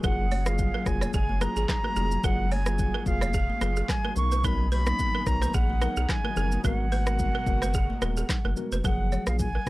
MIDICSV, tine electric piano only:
0, 0, Header, 1, 2, 480
1, 0, Start_track
1, 0, Key_signature, 6, "major"
1, 0, Tempo, 550459
1, 31, Time_signature, 4, 2, 24, 8
1, 8452, End_track
2, 0, Start_track
2, 0, Title_t, "Tine electric piano"
2, 0, Program_c, 0, 4
2, 28, Note_on_c, 0, 54, 97
2, 30, Note_on_c, 0, 58, 87
2, 31, Note_on_c, 0, 65, 93
2, 33, Note_on_c, 0, 68, 110
2, 216, Note_off_c, 0, 54, 0
2, 216, Note_off_c, 0, 58, 0
2, 217, Note_off_c, 0, 65, 0
2, 218, Note_off_c, 0, 68, 0
2, 401, Note_on_c, 0, 54, 80
2, 402, Note_on_c, 0, 58, 70
2, 404, Note_on_c, 0, 65, 70
2, 406, Note_on_c, 0, 68, 86
2, 724, Note_off_c, 0, 54, 0
2, 725, Note_off_c, 0, 58, 0
2, 726, Note_off_c, 0, 65, 0
2, 727, Note_off_c, 0, 68, 0
2, 749, Note_on_c, 0, 54, 78
2, 751, Note_on_c, 0, 58, 71
2, 753, Note_on_c, 0, 65, 72
2, 754, Note_on_c, 0, 68, 87
2, 973, Note_off_c, 0, 54, 0
2, 974, Note_off_c, 0, 58, 0
2, 975, Note_off_c, 0, 65, 0
2, 976, Note_off_c, 0, 68, 0
2, 1229, Note_on_c, 0, 54, 80
2, 1230, Note_on_c, 0, 58, 75
2, 1232, Note_on_c, 0, 65, 70
2, 1234, Note_on_c, 0, 68, 87
2, 1416, Note_off_c, 0, 54, 0
2, 1417, Note_off_c, 0, 58, 0
2, 1418, Note_off_c, 0, 65, 0
2, 1419, Note_off_c, 0, 68, 0
2, 1708, Note_on_c, 0, 54, 77
2, 1710, Note_on_c, 0, 58, 74
2, 1711, Note_on_c, 0, 65, 71
2, 1713, Note_on_c, 0, 68, 88
2, 1896, Note_off_c, 0, 54, 0
2, 1897, Note_off_c, 0, 58, 0
2, 1897, Note_off_c, 0, 65, 0
2, 1898, Note_off_c, 0, 68, 0
2, 1948, Note_on_c, 0, 54, 99
2, 1949, Note_on_c, 0, 58, 91
2, 1952, Note_on_c, 0, 65, 86
2, 1953, Note_on_c, 0, 68, 107
2, 2136, Note_off_c, 0, 54, 0
2, 2136, Note_off_c, 0, 58, 0
2, 2138, Note_off_c, 0, 65, 0
2, 2138, Note_off_c, 0, 68, 0
2, 2320, Note_on_c, 0, 54, 79
2, 2322, Note_on_c, 0, 58, 72
2, 2323, Note_on_c, 0, 65, 70
2, 2325, Note_on_c, 0, 68, 87
2, 2644, Note_off_c, 0, 54, 0
2, 2645, Note_off_c, 0, 58, 0
2, 2645, Note_off_c, 0, 65, 0
2, 2646, Note_off_c, 0, 68, 0
2, 2669, Note_on_c, 0, 54, 79
2, 2670, Note_on_c, 0, 58, 76
2, 2673, Note_on_c, 0, 65, 76
2, 2674, Note_on_c, 0, 68, 87
2, 2893, Note_off_c, 0, 54, 0
2, 2894, Note_off_c, 0, 58, 0
2, 2895, Note_off_c, 0, 65, 0
2, 2895, Note_off_c, 0, 68, 0
2, 3148, Note_on_c, 0, 54, 77
2, 3150, Note_on_c, 0, 58, 73
2, 3151, Note_on_c, 0, 65, 74
2, 3153, Note_on_c, 0, 68, 87
2, 3336, Note_off_c, 0, 54, 0
2, 3337, Note_off_c, 0, 58, 0
2, 3337, Note_off_c, 0, 65, 0
2, 3338, Note_off_c, 0, 68, 0
2, 3629, Note_on_c, 0, 54, 78
2, 3631, Note_on_c, 0, 59, 73
2, 3632, Note_on_c, 0, 63, 73
2, 3634, Note_on_c, 0, 70, 88
2, 3816, Note_off_c, 0, 54, 0
2, 3817, Note_off_c, 0, 59, 0
2, 3818, Note_off_c, 0, 63, 0
2, 3819, Note_off_c, 0, 70, 0
2, 3869, Note_on_c, 0, 54, 97
2, 3871, Note_on_c, 0, 59, 92
2, 3872, Note_on_c, 0, 63, 89
2, 3874, Note_on_c, 0, 70, 107
2, 4056, Note_off_c, 0, 54, 0
2, 4057, Note_off_c, 0, 59, 0
2, 4058, Note_off_c, 0, 63, 0
2, 4059, Note_off_c, 0, 70, 0
2, 4241, Note_on_c, 0, 54, 80
2, 4242, Note_on_c, 0, 59, 70
2, 4244, Note_on_c, 0, 63, 74
2, 4246, Note_on_c, 0, 58, 85
2, 4564, Note_off_c, 0, 54, 0
2, 4565, Note_off_c, 0, 59, 0
2, 4566, Note_off_c, 0, 63, 0
2, 4567, Note_off_c, 0, 58, 0
2, 4589, Note_on_c, 0, 54, 83
2, 4591, Note_on_c, 0, 59, 71
2, 4592, Note_on_c, 0, 63, 74
2, 4594, Note_on_c, 0, 70, 89
2, 4813, Note_off_c, 0, 54, 0
2, 4814, Note_off_c, 0, 59, 0
2, 4815, Note_off_c, 0, 63, 0
2, 4815, Note_off_c, 0, 70, 0
2, 5068, Note_on_c, 0, 54, 78
2, 5070, Note_on_c, 0, 59, 72
2, 5071, Note_on_c, 0, 63, 71
2, 5074, Note_on_c, 0, 70, 89
2, 5256, Note_off_c, 0, 54, 0
2, 5257, Note_off_c, 0, 59, 0
2, 5257, Note_off_c, 0, 63, 0
2, 5259, Note_off_c, 0, 70, 0
2, 5548, Note_on_c, 0, 54, 79
2, 5550, Note_on_c, 0, 59, 73
2, 5551, Note_on_c, 0, 63, 72
2, 5553, Note_on_c, 0, 70, 89
2, 5736, Note_off_c, 0, 54, 0
2, 5737, Note_off_c, 0, 59, 0
2, 5737, Note_off_c, 0, 63, 0
2, 5738, Note_off_c, 0, 70, 0
2, 5789, Note_on_c, 0, 56, 98
2, 5790, Note_on_c, 0, 59, 91
2, 5792, Note_on_c, 0, 66, 90
2, 5794, Note_on_c, 0, 70, 112
2, 5976, Note_off_c, 0, 56, 0
2, 5977, Note_off_c, 0, 59, 0
2, 5978, Note_off_c, 0, 66, 0
2, 5979, Note_off_c, 0, 70, 0
2, 6161, Note_on_c, 0, 56, 77
2, 6163, Note_on_c, 0, 59, 74
2, 6165, Note_on_c, 0, 66, 68
2, 6167, Note_on_c, 0, 70, 85
2, 6484, Note_off_c, 0, 56, 0
2, 6485, Note_off_c, 0, 59, 0
2, 6486, Note_off_c, 0, 66, 0
2, 6487, Note_off_c, 0, 70, 0
2, 6509, Note_on_c, 0, 56, 81
2, 6511, Note_on_c, 0, 59, 73
2, 6512, Note_on_c, 0, 66, 73
2, 6515, Note_on_c, 0, 70, 91
2, 6733, Note_off_c, 0, 56, 0
2, 6734, Note_off_c, 0, 59, 0
2, 6735, Note_off_c, 0, 66, 0
2, 6736, Note_off_c, 0, 70, 0
2, 6988, Note_on_c, 0, 56, 82
2, 6990, Note_on_c, 0, 59, 73
2, 6992, Note_on_c, 0, 66, 69
2, 6994, Note_on_c, 0, 70, 86
2, 7176, Note_off_c, 0, 56, 0
2, 7177, Note_off_c, 0, 59, 0
2, 7178, Note_off_c, 0, 66, 0
2, 7179, Note_off_c, 0, 70, 0
2, 7468, Note_on_c, 0, 56, 74
2, 7470, Note_on_c, 0, 59, 72
2, 7472, Note_on_c, 0, 66, 71
2, 7474, Note_on_c, 0, 70, 85
2, 7656, Note_off_c, 0, 56, 0
2, 7657, Note_off_c, 0, 59, 0
2, 7658, Note_off_c, 0, 66, 0
2, 7659, Note_off_c, 0, 70, 0
2, 7709, Note_on_c, 0, 54, 91
2, 7710, Note_on_c, 0, 58, 86
2, 7712, Note_on_c, 0, 53, 86
2, 7714, Note_on_c, 0, 68, 103
2, 8050, Note_off_c, 0, 54, 0
2, 8051, Note_off_c, 0, 58, 0
2, 8052, Note_off_c, 0, 53, 0
2, 8053, Note_off_c, 0, 68, 0
2, 8081, Note_on_c, 0, 54, 72
2, 8082, Note_on_c, 0, 58, 66
2, 8084, Note_on_c, 0, 65, 64
2, 8086, Note_on_c, 0, 68, 77
2, 8256, Note_off_c, 0, 54, 0
2, 8257, Note_off_c, 0, 58, 0
2, 8257, Note_off_c, 0, 65, 0
2, 8259, Note_off_c, 0, 68, 0
2, 8452, End_track
0, 0, End_of_file